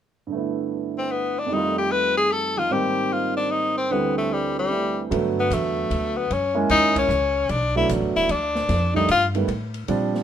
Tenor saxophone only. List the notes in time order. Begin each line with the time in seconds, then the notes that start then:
0.98 C4
1.12 B3
1.39 D4
1.53 D#4
1.78 G4
1.92 B4
2.17 G#4
2.32 A4
2.58 F4
2.73 G4
3.13 F4
3.37 D4
3.51 D#4
3.78 C4
3.92 B3
4.18 A3
4.33 G3
4.59 G3
5.40 B3
5.54 A3
6.17 B3
6.33 C#4
6.71 D#4
6.99 C#4
7.50 D4
7.77 E4
8.16 E4
8.32 D4
8.96 D#4
9.12 F4